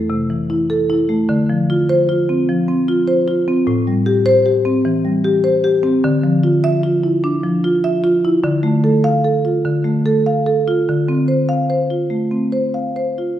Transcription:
marimba
Already playing: A3
0.10 C3
0.30 E3
0.50 E4
0.70 A4
0.90 E4
1.09 A3
1.29 D3
1.50 F3
1.70 F4
1.89 C5
2.09 F4
2.29 C4
2.49 F3
2.68 C4
2.88 F4
3.08 C5
3.28 F4
3.48 C4
3.67 A2
3.87 G3
4.06 G4
4.26 C5
4.46 G4
4.65 C4
4.85 E3
5.05 G3
5.24 G4
5.44 C5
5.64 G4
5.83 C4
6.04 D3
6.24 F3
6.43 F4
6.64 E5
6.83 F4
7.04 E4
7.24 D4
7.44 F3
7.64 F4
7.84 E5
8.04 F4
8.25 E4
8.44 D3
8.63 A3
8.84 A4
9.04 F5
9.24 A4
9.45 F4
9.65 D3
9.84 A3
10.06 A4
10.26 F5
10.46 A4
10.68 F4
10.89 D3
11.09 C4
11.28 C5
11.49 F5
11.70 C5
11.90 F4
12.10 A3
12.31 C4
12.52 C5
12.74 F5
12.96 C5
13.18 F4

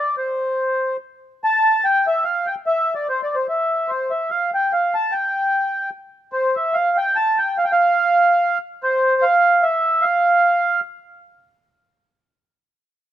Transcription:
accordion
Already playing: D5
0.17 C5
1.44 A5
1.84 G5
2.07 E5
2.24 F5
2.47 G5
2.67 E5
2.95 D5
3.09 C5
3.23 D5
3.35 C5
3.49 E5
3.88 C5
4.10 E5
4.30 F5
4.54 G5
4.73 F5
4.94 A5
5.12 G5
6.33 C5
6.56 E5
6.74 F5
6.97 G5
7.16 A5
7.38 G5
7.58 F5
7.64 G5
7.72 F5
8.83 C5
9.22 F5
9.63 E5
10.02 F5

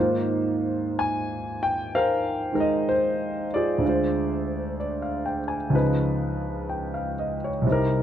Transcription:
grand piano
Already playing: G#2 D#3 A#3 F4 C5 D#5
0.99 G#5
1.63 G5
1.95 A#4 C5 F5
2.52 D#3 G#3 D#4 A#4
2.60 D#5
2.89 C5
3.54 F4 G#4 D5
3.78 D2 D3
3.84 G#3 F4
3.89 C5
4.80 D5
5.02 F5
5.26 G5
5.48 G#5
5.70 C#2 C#3 F3
5.74 D#4 B4
6.69 G5
6.94 F5
7.19 D#5
7.44 C#5
7.61 C2 C3
7.67 G3 D#4
7.72 A#4

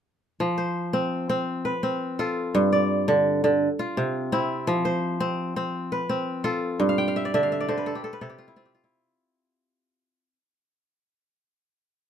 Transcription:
kora
0.40 F3
0.58 C5
0.93 C4
1.29 C4
1.65 B4
1.83 C4
2.19 F4 A4
2.55 G2
2.73 D5
3.08 D3
3.44 D3
3.79 F4
3.97 C3
4.32 C4 E4
4.67 F3
4.85 C5
5.20 C4
5.56 C4
5.92 B4
6.09 C4
6.44 F4 A4
6.80 G2
6.89 F5
6.98 G5
7.08 F5
7.16 E5
7.25 D5
7.34 D3 E5
7.43 F5
7.52 E5
7.60 D5
7.69 D3 C5
7.78 B4
7.86 A4
7.95 G4
8.04 A4
8.13 B4
8.21 C3 A4
8.30 G4
8.38 F4
8.48 E4
8.56 C4 F4
8.65 G4
8.75 F4
8.84 E4

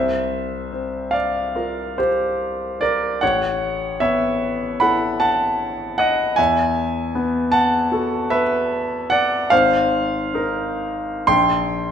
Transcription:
grand piano
Already playing: C2 C5 E5
0.72 C4
1.11 D5 F5
1.56 F4 A#4
1.98 G4 C5
2.81 A#4 D5
3.21 A1 C#5 F#5
4.00 B3 C#5 E5
4.80 E4 A4 F#5 B5
5.20 F#5 A5
5.98 D#5 F#5
6.36 E2 E5 G#5
7.15 B3
7.52 F#5 A5
7.92 F#4 A4
8.30 B4 E5
9.10 D5 F#5
9.50 G#1 C5 F5
10.34 D#4 A#4
11.27 A#1 G5 C6

